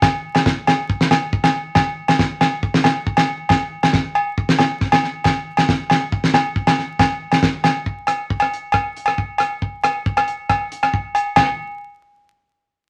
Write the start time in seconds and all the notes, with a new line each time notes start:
0.02 kick, snare, low agogo
0.35 snare, low agogo
0.46 kick, snare
0.67 snare, low agogo
0.90 kick
1.01 snare
1.11 snare, low agogo
1.33 kick
1.44 snare, low agogo
1.75 kick, snare, low agogo
2.08 snare, low agogo
2.19 kick, snare
2.41 snare, low agogo
2.63 kick
2.74 snare
2.84 snare, low agogo
3.07 kick
3.17 snare, low agogo
3.49 kick, snare, low agogo
3.83 snare, low agogo
3.93 kick, snare
4.15 low agogo
4.38 kick
4.49 snare
4.59 snare, low agogo
4.81 kick, snare
4.92 snare, low agogo
5.03 snare
5.24 kick, snare, low agogo
5.57 snare, low agogo
5.69 kick, snare
5.90 snare, low agogo
6.12 kick
6.24 snare
6.34 snare, low agogo
6.56 kick
6.67 snare, low agogo
6.79 snare
6.99 kick, snare, low agogo
7.32 snare, low agogo
7.43 kick, snare
7.64 snare, low agogo
7.86 kick
8.07 cross-stick, closed hi-hat, low agogo
8.30 kick
8.40 cross-stick, low agogo
8.54 closed hi-hat
8.72 kick, cross-stick, low agogo
8.97 closed hi-hat
9.06 cross-stick, low agogo
9.18 kick
9.38 cross-stick, closed hi-hat, low agogo
9.62 kick
9.84 cross-stick, closed hi-hat, low agogo
10.06 kick
10.17 cross-stick, low agogo
10.28 closed hi-hat
10.49 kick, cross-stick, low agogo
10.72 closed hi-hat
10.83 cross-stick, low agogo
10.94 kick
11.15 closed hi-hat, low agogo
11.36 snare, floor tom, crash, low agogo